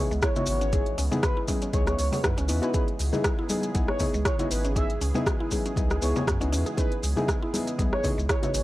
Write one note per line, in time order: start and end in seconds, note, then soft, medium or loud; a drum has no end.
0.00 8.63 C#3 medium
0.00 8.63 E3 medium
0.00 8.63 G#3 medium
0.00 0.10 B3 loud
0.00 8.63 B3 medium
0.00 0.10 D#4 medium
0.00 0.10 E4 medium
0.00 0.10 G#4 loud
0.11 0.21 C#2 medium
0.11 0.22 G#3 medium
0.11 muted conga soft
0.11 maracas soft
0.22 0.35 E4 medium
0.22 0.31 C#5 medium
0.22 kick loud
0.22 cross-stick loud
0.22 closed hi-hat medium
0.22 maracas medium
0.36 0.70 B3 medium
0.36 0.70 D#4 medium
0.36 0.42 E4 medium
0.36 0.70 E4 medium
0.36 0.70 F#4 medium
0.36 0.43 C#5 medium
0.36 closed hi-hat soft
0.36 muted conga medium
0.36 low conga medium
0.36 maracas soft
0.46 0.95 G#1 medium
0.46 0.98 C#5 loud
0.46 open hi-hat loud
0.46 maracas loud
0.61 0.68 C#4 medium
0.61 closed hi-hat soft
0.61 maracas soft
0.72 0.86 B3 medium
0.72 0.86 C#4 medium
0.72 0.86 D#4 medium
0.72 0.86 E4 medium
0.72 0.86 G#4 loud
0.72 kick loud
0.72 closed hi-hat medium
0.72 muted conga soft
0.72 maracas medium
0.86 closed hi-hat soft
0.98 1.10 C#2 medium
0.98 1.05 C#4 medium
0.98 open hi-hat medium
0.98 muted conga soft
0.98 maracas medium
1.11 1.46 B3 loud
1.11 1.18 B3 medium
1.11 1.46 D#4 medium
1.11 1.46 E4 medium
1.11 1.46 G#4 loud
1.11 high conga loud
1.11 low conga medium
1.11 maracas soft
1.23 1.31 F#4 medium
1.23 1.38 B4 medium
1.23 kick loud
1.23 cross-stick loud
1.23 closed hi-hat medium
1.23 muted conga soft
1.23 maracas soft
1.37 1.43 E4 medium
1.48 1.68 B3 medium
1.48 1.61 C#4 medium
1.48 1.68 D#4 medium
1.48 1.68 E4 medium
1.48 1.68 G#4 medium
1.48 kick medium
1.48 open hi-hat medium
1.48 muted conga soft
1.48 high conga loud
1.48 maracas medium
1.62 1.68 C#4 medium
1.62 closed hi-hat soft
1.62 maracas soft
1.73 1.95 C#2 medium
1.73 1.96 B3 loud
1.73 1.96 D#4 medium
1.73 1.96 E4 medium
1.73 1.96 G#4 loud
1.73 1.82 C#5 medium
1.73 kick loud
1.73 closed hi-hat medium
1.73 high conga loud
1.73 maracas soft
1.87 1.95 C#5 medium
1.87 cross-stick medium
1.87 closed hi-hat soft
1.87 muted conga medium
1.87 maracas soft
1.99 2.10 C#2 medium
1.99 2.07 C#5 medium
1.99 open hi-hat medium
1.99 maracas medium
2.12 2.19 B3 medium
2.12 2.20 C#5 medium
2.12 open hi-hat medium
2.12 muted conga soft
2.12 high conga medium
2.12 low conga loud
2.12 maracas soft
2.23 2.35 F#2 medium
2.23 2.37 B3 medium
2.23 2.37 D#4 medium
2.23 2.37 E4 medium
2.23 2.31 F#4 medium
2.23 2.37 B4 medium
2.23 kick loud
2.23 cross-stick loud
2.23 closed hi-hat medium
2.23 maracas medium
2.37 2.51 C#2 loud
2.37 2.44 C#4 loud
2.37 closed hi-hat soft
2.37 muted conga soft
2.37 maracas soft
2.48 2.61 E2 medium
2.48 2.59 B3 medium
2.48 2.62 C#4 medium
2.48 2.59 D#4 medium
2.48 2.59 E4 medium
2.48 2.59 B4 loud
2.48 open hi-hat medium
2.48 maracas loud
2.62 2.71 B3 loud
2.62 2.71 D#4 medium
2.62 2.71 E4 medium
2.62 2.71 F#4 loud
2.62 2.69 G#4 medium
2.62 2.70 B4 medium
2.62 closed hi-hat soft
2.62 maracas soft
2.74 2.87 B3 medium
2.74 2.82 C#4 medium
2.74 2.87 D#4 medium
2.74 2.87 E4 medium
2.74 2.87 G#4 loud
2.74 8.63 G#4 medium
2.74 2.83 B4 medium
2.74 kick loud
2.74 closed hi-hat medium
2.74 muted conga soft
2.74 maracas soft
2.88 closed hi-hat soft
2.99 3.11 C#2 medium
2.99 open hi-hat medium
2.99 muted conga soft
2.99 maracas medium
3.13 3.47 B3 loud
3.13 3.47 D#4 medium
3.13 3.47 E4 medium
3.13 3.47 G#4 loud
3.13 high conga loud
3.13 low conga medium
3.13 maracas soft
3.24 3.32 E4 medium
3.24 kick loud
3.24 cross-stick loud
3.24 closed hi-hat medium
3.24 muted conga soft
3.24 maracas medium
3.39 3.45 E4 medium
3.49 3.70 B3 medium
3.49 3.69 D#4 medium
3.49 3.70 E4 medium
3.49 3.70 G#4 medium
3.49 open hi-hat medium
3.49 muted conga soft
3.49 high conga loud
3.49 maracas loud
3.63 closed hi-hat soft
3.63 maracas soft
3.74 3.87 B1 medium
3.74 3.98 B3 medium
3.74 3.83 B3 medium
3.74 3.98 D#4 medium
3.74 3.98 E4 medium
3.74 3.98 G#4 loud
3.74 kick loud
3.74 closed hi-hat medium
3.74 high conga loud
3.74 maracas soft
3.88 4.02 C#5 loud
3.88 cross-stick medium
3.88 muted conga soft
3.99 4.13 B3 loud
3.99 4.13 D#4 medium
3.99 4.13 E4 medium
3.99 4.13 G#4 loud
3.99 4.13 C#5 medium
3.99 kick medium
3.99 open hi-hat medium
3.99 low conga loud
3.99 maracas medium
4.13 4.24 C#2 medium
4.13 4.25 G#3 medium
4.13 muted conga soft
4.13 maracas soft
4.25 4.38 E4 medium
4.25 4.34 C#5 medium
4.25 kick loud
4.25 cross-stick loud
4.25 closed hi-hat medium
4.25 maracas soft
4.39 4.73 B3 medium
4.39 4.73 D#4 medium
4.39 4.73 E4 medium
4.39 4.46 E4 medium
4.39 4.73 F#4 medium
4.39 4.47 C#5 medium
4.39 closed hi-hat soft
4.39 muted conga medium
4.39 low conga medium
4.39 maracas soft
4.51 4.98 G#1 medium
4.51 4.66 B4 medium
4.51 open hi-hat medium
4.51 maracas loud
4.64 4.71 C#4 medium
4.64 closed hi-hat soft
4.64 maracas soft
4.76 4.89 B3 medium
4.76 4.89 C#4 medium
4.76 4.89 D#4 medium
4.76 4.89 E4 medium
4.76 4.89 G#4 loud
4.76 4.91 E5 loud
4.76 kick loud
4.76 closed hi-hat medium
4.76 muted conga medium
4.76 maracas medium
4.90 closed hi-hat soft
5.01 5.13 C#2 medium
5.01 5.09 C#4 medium
5.01 open hi-hat medium
5.01 muted conga soft
5.01 maracas medium
5.14 5.49 B3 medium
5.14 5.21 B3 medium
5.14 5.49 D#4 medium
5.14 5.49 E4 medium
5.14 5.49 G#4 loud
5.14 high conga loud
5.14 low conga medium
5.14 maracas soft
5.26 5.34 F#4 medium
5.26 kick loud
5.26 cross-stick loud
5.26 closed hi-hat medium
5.26 muted conga medium
5.26 maracas medium
5.40 5.47 E4 medium
5.51 5.72 B3 medium
5.51 5.64 C#4 medium
5.51 5.72 D#4 medium
5.51 5.72 E4 medium
5.51 5.72 G#4 loud
5.51 kick medium
5.51 open hi-hat medium
5.51 muted conga soft
5.51 high conga loud
5.51 maracas medium
5.66 5.72 C#4 medium
5.66 closed hi-hat soft
5.66 maracas soft
5.76 5.99 C#2 medium
5.76 6.00 B3 loud
5.76 6.00 D#4 medium
5.76 5.99 E4 medium
5.76 6.00 G#4 loud
5.76 kick loud
5.76 closed hi-hat medium
5.76 high conga loud
5.76 maracas medium
5.90 cross-stick medium
5.90 muted conga soft
5.90 maracas soft
6.02 6.14 C#2 loud
6.02 6.15 B3 loud
6.02 6.15 D#4 medium
6.02 6.15 E4 medium
6.02 6.15 G#4 loud
6.02 6.11 C#5 medium
6.02 open hi-hat medium
6.02 maracas medium
6.15 6.22 B3 medium
6.15 6.23 C#5 medium
6.15 muted conga soft
6.15 high conga medium
6.15 low conga loud
6.15 maracas soft
6.27 6.39 F#2 medium
6.27 6.35 F#4 medium
6.27 kick loud
6.27 cross-stick loud
6.27 closed hi-hat medium
6.27 maracas medium
6.40 6.54 C#2 loud
6.40 6.75 B3 medium
6.40 6.47 C#4 loud
6.40 6.75 D#4 medium
6.40 6.75 E4 medium
6.40 6.75 F#4 medium
6.40 closed hi-hat soft
6.40 muted conga medium
6.40 maracas soft
6.52 6.64 E2 loud
6.52 6.66 C#4 medium
6.52 open hi-hat medium
6.52 maracas loud
6.66 6.73 G#4 medium
6.66 closed hi-hat soft
6.66 maracas soft
6.77 6.91 B3 loud
6.77 6.85 C#4 medium
6.77 6.91 D#4 medium
6.77 6.91 E4 medium
6.77 6.91 G#4 loud
6.77 6.93 B4 loud
6.77 kick loud
6.77 closed hi-hat medium
6.77 muted conga medium
6.77 maracas medium
6.92 closed hi-hat soft
7.03 7.15 C#2 loud
7.03 open hi-hat medium
7.03 muted conga soft
7.03 maracas medium
7.16 7.51 B3 medium
7.16 7.51 D#4 medium
7.16 7.51 E4 medium
7.16 7.51 G#4 loud
7.16 high conga medium
7.16 low conga loud
7.16 maracas soft
7.28 7.36 E4 medium
7.28 kick loud
7.28 cross-stick loud
7.28 closed hi-hat medium
7.28 muted conga medium
7.28 maracas medium
7.42 7.48 E4 medium
7.53 7.73 B3 medium
7.53 7.73 D#4 medium
7.53 7.73 E4 medium
7.53 7.73 G#4 medium
7.53 open hi-hat loud
7.53 muted conga soft
7.53 high conga loud
7.53 maracas medium
7.67 closed hi-hat soft
7.67 maracas soft
7.78 7.90 B1 medium
7.78 8.01 B3 loud
7.78 7.86 B3 medium
7.78 8.01 D#4 medium
7.78 8.01 E4 medium
7.78 8.01 G#4 loud
7.78 kick loud
7.78 closed hi-hat medium
7.78 high conga loud
7.78 maracas soft
7.93 8.06 C#5 loud
7.93 cross-stick medium
7.93 muted conga medium
8.04 8.17 B3 loud
8.04 8.17 D#4 medium
8.04 8.17 E4 medium
8.04 8.17 G#4 loud
8.04 8.16 C#5 medium
8.04 kick medium
8.04 open hi-hat medium
8.04 low conga loud
8.04 maracas medium
8.18 8.27 C#2 medium
8.18 8.29 G#3 medium
8.18 muted conga soft
8.18 maracas soft
8.29 8.42 E4 medium
8.29 8.38 C#5 medium
8.29 kick loud
8.29 cross-stick loud
8.29 closed hi-hat medium
8.29 maracas soft
8.42 8.63 B3 medium
8.42 8.63 D#4 medium
8.42 8.63 E4 medium
8.42 8.49 E4 medium
8.42 8.63 F#4 medium
8.42 8.51 C#5 medium
8.42 closed hi-hat soft
8.42 muted conga medium
8.42 low conga medium
8.42 maracas soft
8.54 8.63 G#1 medium
8.54 8.63 C#5 loud
8.54 open hi-hat medium
8.54 maracas loud